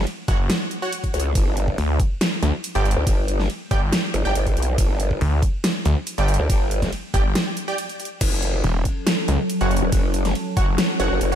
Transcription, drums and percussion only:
0.07 ride
0.28 kick, closed hi-hat
0.50 snare, closed hi-hat, ride
0.71 closed hi-hat
0.93 closed hi-hat, ride
1.04 kick, closed hi-hat
1.14 closed hi-hat
1.20 closed hi-hat
1.35 kick, closed hi-hat, ride
1.57 closed hi-hat
1.68 kick
1.78 ride
2.00 kick, closed hi-hat
2.21 snare, closed hi-hat, ride
2.43 closed hi-hat
2.64 closed hi-hat, ride
2.75 closed hi-hat
2.85 closed hi-hat
2.91 closed hi-hat
3.07 kick, closed hi-hat, ride
3.28 closed hi-hat
3.40 snare
3.50 ride
3.71 kick, closed hi-hat
3.93 snare, closed hi-hat, ride
4.14 closed hi-hat
4.35 closed hi-hat, ride
4.47 kick, closed hi-hat
4.57 closed hi-hat
4.62 closed hi-hat
4.78 kick, closed hi-hat, ride
5.00 closed hi-hat
5.11 kick
5.21 ride
5.42 kick, closed hi-hat
5.64 snare, closed hi-hat, ride
5.85 closed hi-hat
6.07 closed hi-hat, ride
6.18 closed hi-hat
6.28 closed hi-hat
6.34 closed hi-hat
6.50 kick, closed hi-hat, ride
6.71 closed hi-hat
6.82 kick, snare, closed hi-hat
6.93 ride
7.14 kick, closed hi-hat
7.35 snare, closed hi-hat, ride
7.57 closed hi-hat
7.78 closed hi-hat, ride
7.89 closed hi-hat
8.00 closed hi-hat
8.05 closed hi-hat
8.21 kick, closed hi-hat, crash, ride
8.42 closed hi-hat
8.64 ride
8.85 kick, closed hi-hat
9.07 snare, closed hi-hat, ride
9.28 closed hi-hat
9.50 closed hi-hat, ride
9.61 closed hi-hat
9.71 closed hi-hat
9.77 closed hi-hat
9.92 kick, closed hi-hat, ride
10.14 closed hi-hat
10.25 snare, closed hi-hat
10.35 ride
10.57 kick, closed hi-hat
10.78 snare, closed hi-hat, ride
11.00 closed hi-hat
11.21 closed hi-hat, ride

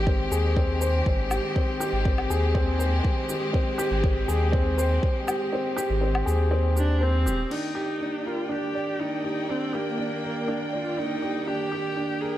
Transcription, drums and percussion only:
0.07 kick
0.32 shaker
0.56 kick
0.81 shaker
1.06 kick
1.31 low woodblock, shaker
1.56 kick
1.81 shaker
2.05 kick
2.18 low woodblock
2.31 shaker
2.55 kick
2.80 shaker
3.05 kick
3.29 shaker
3.54 kick
3.79 shaker
4.04 kick
4.29 shaker
4.53 kick
4.79 shaker
5.03 kick
5.28 low woodblock, shaker
5.78 shaker
6.15 low woodblock
6.28 shaker
6.77 shaker
7.27 shaker
7.51 crash

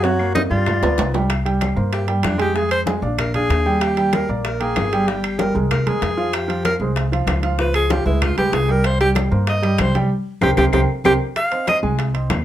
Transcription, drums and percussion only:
0.04 high bongo, high conga, high timbale
0.19 high conga, claves
0.35 high bongo, high conga, high timbale
0.51 high bongo, high conga
0.66 high bongo, high conga, low conga, low timbale, claves
0.83 high bongo, high conga, low timbale
0.98 low bongo, low timbale
1.14 low bongo, high conga, low timbale
1.30 high bongo, high conga, high timbale, claves
1.46 high conga, high timbale
1.61 high bongo, high conga, high timbale, claves
1.93 high bongo, high conga, high timbale
2.08 high conga, high timbale
2.23 high bongo, low bongo, high conga, high timbale, low timbale, claves
2.40 high timbale
2.56 high bongo, high conga
2.71 high conga, high timbale, claves
2.87 high bongo, high conga, high timbale
3.02 high bongo, high conga
3.18 high bongo, high conga, low conga, high timbale, claves
3.34 high bongo, high conga, low conga, high timbale
3.50 high bongo, low bongo, high conga, high timbale
3.66 high bongo, high conga
3.81 high bongo, high conga, high timbale, claves
3.97 high conga, high timbale
4.13 high bongo, high conga, high timbale, claves
4.45 high bongo, high conga, high timbale
4.61 high conga, high timbale
4.76 high bongo, low bongo, high conga, high timbale, low timbale, claves
4.93 high timbale
5.08 high bongo, high conga
5.24 high conga, high timbale, claves
5.39 high bongo, high conga, high timbale
5.56 high bongo, high conga
5.71 high bongo, high conga, low conga, high timbale, claves
5.87 high bongo, high conga, low conga, high timbale
6.02 high bongo, low bongo, high conga, high timbale
6.18 high bongo, high conga
6.33 high bongo, high conga, high timbale, claves
6.49 high conga, high timbale
6.65 high bongo, high conga, high timbale, claves
6.96 high bongo, high conga, high timbale
7.12 high conga, high timbale
7.27 high bongo, low bongo, high conga, high timbale, low timbale, claves
7.43 high timbale
7.58 high bongo, high conga
7.74 high conga, high timbale, claves
7.90 high bongo, high conga, high timbale
8.06 high bongo, high conga
8.22 high bongo, high conga, low conga, high timbale, claves
8.37 high bongo, high timbale
8.53 high bongo, low bongo, high conga, high timbale, low timbale
8.69 high bongo, high conga
8.84 high bongo, high timbale, claves
9.01 high conga, high timbale
9.15 high bongo, high conga, high timbale, claves
9.47 high bongo, high conga, high timbale
9.63 high timbale
9.78 high bongo, low bongo, high conga, high timbale, claves
9.95 high conga, high timbale
10.42 low bongo, high conga, high timbale, claves
10.57 low bongo, high conga, high timbale, claves
10.73 low bongo, high conga, high timbale, claves
11.05 low bongo, high conga, high timbale, claves
11.36 high bongo, high conga, high timbale, claves
11.52 high conga, high timbale
11.67 high bongo, high conga, high timbale, claves
11.99 high bongo, high conga, high timbale
12.15 high conga, high timbale
12.30 high bongo, low bongo, high conga, high timbale, low timbale, claves

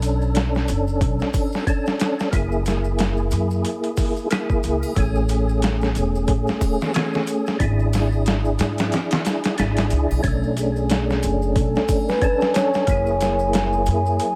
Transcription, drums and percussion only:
0.02 closed hi-hat, maracas
0.22 maracas
0.35 snare, closed hi-hat, maracas
0.55 snare, maracas
0.68 closed hi-hat, maracas
0.87 maracas
1.01 kick, closed hi-hat, maracas
1.19 snare, maracas
1.33 kick, closed hi-hat, triangle, maracas
1.52 snare, maracas
1.67 kick, closed hi-hat, maracas
1.86 snare, maracas
2.00 snare, closed hi-hat, maracas
2.19 snare, maracas
2.33 kick, closed hi-hat, maracas
2.52 maracas
2.65 snare, closed hi-hat, maracas
2.84 maracas
2.98 snare, closed hi-hat, maracas
3.17 maracas
3.31 closed hi-hat, maracas
3.51 maracas
3.65 closed hi-hat, maracas
3.84 closed hi-hat, maracas
3.97 kick, open hi-hat, maracas
4.16 maracas
4.31 snare, closed hi-hat, maracas
4.50 kick, maracas
4.63 closed hi-hat, maracas
4.83 triangle, maracas
4.96 kick, closed hi-hat, maracas
5.15 maracas
5.29 closed hi-hat, maracas
5.49 maracas
5.62 snare, closed hi-hat, maracas
5.81 snare, maracas
5.95 closed hi-hat, maracas
6.15 maracas
6.27 kick, closed hi-hat, maracas
6.47 snare, maracas
6.61 kick, closed hi-hat, triangle, maracas
6.81 snare, maracas
6.94 snare, closed hi-hat, maracas
7.13 snare, maracas
7.27 closed hi-hat, maracas
7.46 snare, maracas
7.60 kick, closed hi-hat, maracas
7.79 maracas
7.93 snare, closed hi-hat, triangle, maracas
8.12 maracas
8.26 snare, closed hi-hat, maracas
8.45 maracas
8.59 snare, closed hi-hat, maracas
8.78 snare, closed hi-hat, maracas
8.92 snare, closed hi-hat, maracas
9.11 snare, closed hi-hat, maracas
9.25 snare, closed hi-hat, maracas
9.44 snare, closed hi-hat, maracas
9.58 snare, closed hi-hat, maracas
9.77 snare, closed hi-hat, maracas
9.90 closed hi-hat, maracas
10.11 triangle, maracas
10.23 kick, closed hi-hat, maracas
10.44 maracas
10.57 closed hi-hat, maracas
10.76 maracas
10.89 snare, closed hi-hat, maracas
11.10 snare, maracas
11.23 closed hi-hat, maracas
11.42 maracas
11.56 kick, closed hi-hat, maracas
11.75 snare, maracas
11.88 kick, closed hi-hat, triangle, maracas
12.08 snare, maracas
12.21 kick, closed hi-hat, maracas
12.41 snare, maracas
12.54 snare, closed hi-hat, maracas
12.74 snare, maracas
12.87 kick, closed hi-hat, maracas
13.06 maracas
13.21 snare, closed hi-hat, maracas
13.39 maracas
13.53 snare, closed hi-hat, maracas
13.73 maracas
13.86 closed hi-hat, maracas
14.06 maracas
14.19 closed hi-hat, maracas

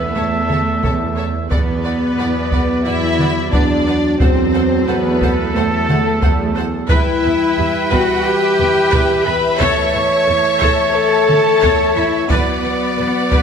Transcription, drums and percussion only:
0.50 taiko mid
0.83 taiko
1.51 taiko
2.52 taiko
3.19 taiko mid
3.53 taiko
4.20 taiko
5.21 taiko
5.89 taiko mid
6.23 taiko
6.90 taiko
7.92 taiko
8.60 taiko mid
8.93 taiko
9.61 taiko
10.61 taiko
11.29 taiko mid
11.63 taiko
12.30 taiko
13.32 taiko

